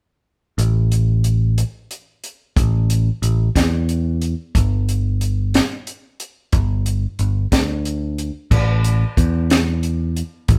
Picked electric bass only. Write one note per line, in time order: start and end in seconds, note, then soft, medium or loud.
0.58 1.62 A1 medium
2.57 3.09 A1 loud
3.22 3.48 A1 medium
3.55 4.33 E2 medium
4.55 5.59 G1 medium
6.53 7.05 G1 medium
7.19 7.45 G1 medium
7.52 8.30 D2 medium
8.51 9.03 A1 medium
9.17 10.21 E2 medium
10.49 10.59 A1 medium